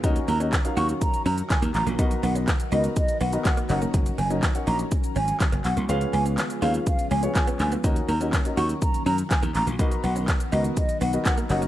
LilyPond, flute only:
\new Staff \with { instrumentName = "Flute" } { \time 4/4 \key ces \lydian \tempo 4 = 123 r8 bes''16 r8. des'''16 r16 bes''8 bes''16 r16 aes''16 r16 bes''16 r16 | r8 fis''16 r8. dis''16 r16 dis''8 fis''16 r16 fis''16 r16 ges''16 r16 | r8 aes''16 r8. bes''16 r8. aes''8 r8 ges''16 r16 | r8 aes''16 r8. f''16 r16 f''8 aes''16 r16 aes''16 r16 aes''16 r16 |
r8 bes''16 r8. des'''16 r16 bes''8 bes''16 r16 aes''16 r16 bes''16 r16 | r8 fis''16 r8. dis''16 r16 dis''8 fis''16 r16 fis''16 r16 ges''16 r16 | }